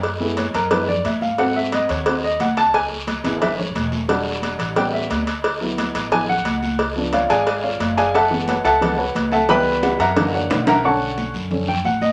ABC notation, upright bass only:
X:1
M:4/4
L:1/8
Q:1/4=178
K:F#m
V:1 name="Upright bass" clef=bass
F,,3 F,,3 G,,2- | G,,3 ^D,,3 C,,2- | C,,3 G,,,3 E,,,2- | E,,,3 A,,,3 D,,2- |
D,,3 A,,,3 C,,2- | C,,3 G,,,3 F,,,2- | F,,,3 C,,3 C,,2- | C,,3 F,,3 B,,,2- |
[K:Bm] B,,,3 F,,3 A,,,2 |]